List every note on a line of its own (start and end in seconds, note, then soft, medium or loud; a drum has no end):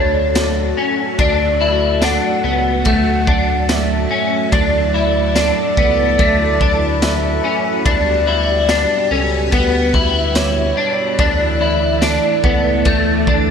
0.00 0.73 D2 loud
0.00 1.16 F#3 medium
0.00 7.82 A3 medium
0.00 0.77 D4 medium
0.00 4.48 F#4 medium
0.00 7.82 A4 medium
0.00 0.78 C#5 loud
0.35 snare loud
0.35 ride medium
0.35 tambourine medium
0.77 1.19 C#4 medium
1.19 2.19 D2 loud
1.19 7.82 F#3 medium
1.19 1.61 D4 medium
1.19 1.99 D5 loud
1.19 kick loud
1.19 ride medium
1.61 2.02 E4 medium
2.02 2.43 D4 medium
2.02 2.82 F#5 loud
2.02 snare medium
2.02 ride medium
2.02 tambourine medium
2.44 2.83 C#2 loud
2.44 2.86 B3 medium
2.85 4.07 D2 loud
2.85 3.27 A3 medium
2.85 3.72 F#5 loud
2.85 kick medium
2.85 ride medium
3.27 4.10 D4 medium
3.27 kick loud
3.69 4.54 E5 loud
3.69 snare loud
3.69 ride medium
3.69 tambourine medium
4.11 4.52 C#4 medium
4.52 5.53 D2 loud
4.52 4.94 D4 medium
4.52 7.82 E4 medium
4.52 7.05 D5 loud
4.52 kick loud
4.52 ride medium
4.94 5.36 E4 medium
5.35 5.77 D4 medium
5.35 snare loud
5.35 ride medium
5.35 tambourine medium
5.77 6.17 C#2 medium
5.77 6.19 B3 medium
5.77 kick medium
6.19 7.40 D2 loud
6.19 6.61 A3 medium
6.19 kick medium
6.19 ride medium
6.61 7.44 D4 medium
6.61 kick medium
7.02 7.86 E5 loud
7.02 snare loud
7.02 ride medium
7.02 tambourine medium
7.44 7.85 C#4 medium
7.85 8.86 D2 loud
7.85 11.16 G3 medium
7.85 11.16 B3 medium
7.85 8.27 D4 loud
7.85 11.16 F#4 medium
7.85 11.15 G4 loud
7.85 9.13 D5 loud
7.85 kick loud
7.85 ride medium
8.27 8.69 E4 medium
8.69 9.11 D4 medium
8.69 snare loud
8.69 ride medium
8.69 tambourine medium
9.11 9.50 C#2 medium
9.11 9.52 C#4 medium
9.11 9.52 A4 medium
9.52 10.73 D2 loud
9.52 9.94 B3 loud
9.52 10.38 B4 loud
9.52 kick medium
9.52 ride medium
9.94 10.77 E4 medium
9.94 kick medium
10.35 11.22 C#5 medium
10.35 snare loud
10.35 ride medium
10.35 tambourine medium
10.77 11.18 D4 medium
11.19 12.19 D2 loud
11.19 13.51 E3 medium
11.19 13.51 A3 medium
11.19 11.61 D4 loud
11.19 13.51 E4 medium
11.19 13.51 A4 loud
11.19 13.51 D5 loud
11.19 kick loud
11.19 ride medium
11.61 12.02 E4 medium
12.02 12.43 D4 medium
12.02 snare loud
12.02 ride medium
12.02 tambourine medium
12.44 12.84 C#2 medium
12.44 12.85 B3 medium
12.44 kick loud
12.85 13.51 D2 loud
12.85 13.27 A3 loud
12.85 kick medium
12.85 ride medium
13.27 13.51 D4 medium
13.27 kick medium